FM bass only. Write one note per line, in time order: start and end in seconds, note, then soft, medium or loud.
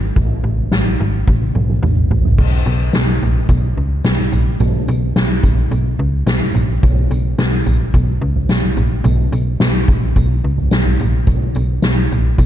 0.00 0.12 G#1 medium
0.16 0.41 A1 loud
0.44 0.68 A1 medium
0.72 0.96 A1 loud
1.00 1.25 G#1 loud
1.28 1.52 A1 loud
1.55 1.80 B1 medium
1.83 2.07 A1 loud
2.11 2.35 A1 medium
2.38 2.63 B1 medium
2.66 2.91 B1 loud
2.95 3.19 B1 loud
3.23 3.47 A#1 medium
3.49 3.74 B1 loud
3.77 4.02 C#2 medium
4.05 4.29 B1 loud
4.32 4.57 A#1 medium
4.61 4.85 B1 medium
4.88 5.13 B1 loud
5.16 5.41 B1 loud
5.44 5.68 A#1 medium
5.71 5.96 B1 loud
5.99 6.24 C#2 loud
6.27 6.51 B1 loud
6.54 6.79 A#1 medium
6.83 7.08 B1 medium
7.11 7.35 B1 medium
7.38 7.63 B1 loud
7.66 7.91 A#1 medium
7.94 8.18 B1 loud
8.21 8.46 C#2 loud
8.49 8.74 B1 loud
8.77 9.02 A#1 medium
9.04 9.29 B1 loud
9.32 9.57 B1 loud
9.61 9.85 B1 loud
9.88 10.13 A#1 medium
10.16 10.41 B1 loud
10.44 10.69 C#2 medium
10.73 10.97 B1 loud
11.01 11.25 A#1 medium
11.27 11.52 B1 medium
11.56 11.80 B1 medium
11.84 12.08 B1 loud
12.12 12.36 A#1 medium
12.38 12.46 B1 loud